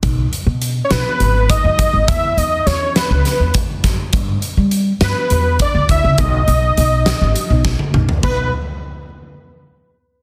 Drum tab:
CC |--------------|--------------|--------------|--------------|
HH |x-x-x-x-x-x-x-|x-x-x-x-x-x-x-|x-x-x-x-x-x-x-|x-x-x-x-x-----|
SD |------o-------|----o-o-o---o-|------o-------|------o---o---|
T1 |--------------|--------------|--------------|-----------o--|
T2 |--------------|--------------|--------------|------------o-|
FT |--------------|--------------|--------------|-------------o|
BD |o---------o-o-|o---------o-o-|o---------o-o-|o---------o---|

CC |x-------------|
HH |--------------|
SD |--------------|
T1 |--------------|
T2 |--------------|
FT |o-------------|
BD |o-------------|